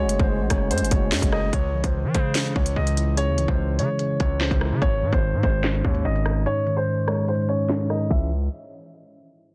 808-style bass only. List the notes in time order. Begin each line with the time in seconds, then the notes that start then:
0.04 F#1
0.20 F#1
0.40 A1
0.50 F#1
0.71 F#2
0.81 F#1
0.91 F#1
1.12 F#2
1.22 F#1
1.53 C#2
1.74 C2
1.84 C#2
2.04 E3
2.15 C#3
2.56 C#2
2.76 C#2
3.28 D#2
3.38 C#2
3.48 C#2
3.79 C#3
4.20 C#2
4.51 C#2
4.71 C#3
4.82 G#1
5.02 G#2
5.13 G#1
5.33 G#2
5.43 G#1
5.85 D#2
6.05 G#1
8.11 C#2